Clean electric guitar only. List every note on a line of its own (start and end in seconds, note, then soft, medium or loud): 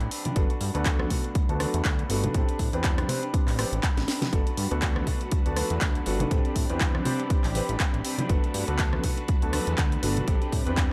0.00 0.10 D4 medium
0.00 0.11 G4 medium
0.00 0.11 B4 loud
0.11 0.25 C4 medium
0.11 0.25 D4 medium
0.11 0.24 G4 medium
0.11 0.24 B4 medium
0.25 0.35 D4 soft
0.25 0.36 G4 medium
0.25 0.36 B4 medium
0.35 0.50 A3 medium
0.35 0.50 D4 medium
0.35 0.50 F#4 medium
0.50 0.75 D4 soft
0.50 0.74 F#4 medium
0.50 0.73 B4 medium
0.74 0.84 D4 medium
0.74 0.85 F#4 medium
0.74 0.85 B4 medium
0.85 1.08 A3 medium
0.85 1.09 D4 loud
0.85 1.10 F#4 loud
1.10 1.59 A3 medium
1.10 1.60 D4 medium
1.10 1.59 F#4 medium
1.10 1.61 B4 medium
1.59 1.83 A3 medium
1.59 1.83 D4 medium
1.59 1.84 F#4 medium
1.59 1.84 B4 medium
1.84 2.08 A3 medium
1.84 2.08 D4 medium
1.84 2.09 F#4 medium
1.84 2.10 B4 medium
2.09 2.23 A3 medium
2.09 2.24 D4 medium
2.09 2.23 F#4 medium
2.09 2.21 B4 medium
2.23 2.33 D4 soft
2.23 2.34 F#4 soft
2.23 2.34 B4 medium
2.34 2.48 C4 medium
2.34 2.48 D4 medium
2.34 2.47 G4 loud
2.34 2.46 B4 medium
2.47 2.73 D4 soft
2.47 2.72 G4 soft
2.47 2.71 B4 medium
2.72 2.82 D4 soft
2.72 2.83 G4 medium
2.72 2.83 B4 medium
2.83 3.07 C4 medium
2.83 3.08 D4 medium
2.83 3.08 G4 medium
2.83 3.09 B4 loud
3.08 3.22 C4 medium
3.08 3.23 D4 medium
3.08 3.22 G4 medium
3.08 3.21 B4 medium
3.22 3.57 D4 soft
3.22 3.58 G4 soft
3.22 3.58 B4 medium
3.57 3.81 C4 medium
3.57 3.82 D4 medium
3.57 3.82 G4 medium
3.57 3.83 B4 medium
3.83 4.06 C4 medium
3.83 4.07 D4 medium
3.83 4.07 G4 medium
3.83 4.08 B4 loud
4.07 4.21 C4 medium
4.07 4.22 D4 medium
4.07 4.21 G4 medium
4.07 4.20 B4 medium
4.21 4.31 D4 soft
4.21 4.33 G4 medium
4.21 4.32 B4 medium
4.32 4.46 A3 medium
4.32 4.47 D4 medium
4.32 4.46 F#4 medium
4.32 4.45 B4 loud
4.46 4.72 D4 medium
4.46 4.71 F#4 soft
4.46 4.70 B4 medium
4.71 4.81 D4 medium
4.71 4.82 F#4 medium
4.71 4.82 B4 medium
4.82 5.05 A3 medium
4.82 5.06 D4 loud
4.82 5.07 F#4 medium
4.82 5.08 B4 medium
5.06 5.56 A3 medium
5.06 5.57 D4 medium
5.06 5.56 F#4 medium
5.06 5.58 B4 medium
5.56 5.80 A3 medium
5.56 5.80 D4 medium
5.56 5.81 F#4 medium
5.56 5.81 B4 medium
5.82 6.06 F#4 medium
5.82 6.06 B4 medium
6.06 6.20 A3 medium
6.06 6.20 D4 medium
6.06 6.19 F#4 medium
6.06 6.19 B4 medium
6.20 6.30 D4 soft
6.20 6.31 F#4 medium
6.20 6.31 B4 medium
6.31 6.45 C4 medium
6.31 6.45 D4 medium
6.31 6.45 G4 loud
6.31 6.44 B4 medium
6.45 6.71 D4 soft
6.45 6.70 G4 medium
6.45 6.69 B4 medium
6.70 6.80 D4 medium
6.70 6.80 G4 medium
6.70 6.81 B4 medium
6.80 7.04 C4 medium
6.80 7.05 G4 medium
6.80 7.06 B4 loud
7.05 7.53 C4 medium
7.05 7.55 D4 medium
7.05 7.56 G4 medium
7.05 7.56 B4 medium
7.55 7.78 C4 medium
7.55 7.79 D4 medium
7.55 7.79 G4 medium
7.55 7.80 B4 medium
7.80 8.03 C4 medium
7.80 8.03 D4 medium
7.80 8.04 G4 medium
7.80 8.05 B4 medium
8.04 8.18 C4 medium
8.04 8.19 D4 medium
8.04 8.18 G4 medium
8.04 8.17 B4 medium
8.18 8.28 D4 soft
8.18 8.29 G4 medium
8.18 8.29 B4 medium
8.29 8.68 A3 medium
8.29 8.68 D4 medium
8.29 8.67 F#4 medium
8.29 8.66 B4 medium
8.67 8.78 D4 soft
8.67 8.78 F#4 medium
8.67 8.78 B4 medium
8.78 9.01 A3 loud
8.78 9.02 D4 medium
8.78 9.03 F#4 loud
8.78 9.03 B4 loud
9.03 9.17 A3 medium
9.03 9.17 D4 medium
9.03 9.16 F#4 medium
9.03 9.15 B4 medium
9.16 9.52 D4 soft
9.16 9.52 F#4 soft
9.16 9.53 B4 medium
9.52 9.76 A3 medium
9.52 9.76 D4 medium
9.52 9.77 F#4 medium
9.52 9.77 B4 medium
9.77 10.01 A3 medium
9.77 10.01 D4 medium
9.77 10.03 B4 medium
10.02 10.16 A3 medium
10.02 10.17 D4 medium
10.02 10.16 F#4 medium
10.02 10.15 B4 medium
10.16 10.26 D4 soft
10.16 10.27 F#4 medium
10.16 10.27 B4 medium
10.27 10.41 C4 medium
10.27 10.41 D4 medium
10.27 10.41 G4 loud
10.27 10.39 B4 loud
10.41 10.66 D4 soft
10.41 10.65 G4 medium
10.41 10.64 B4 medium
10.65 10.76 D4 medium
10.65 10.76 G4 medium
10.65 10.77 B4 medium
10.76 10.93 C4 medium
10.76 10.93 D4 loud
10.76 10.93 G4 loud
10.76 10.93 B4 loud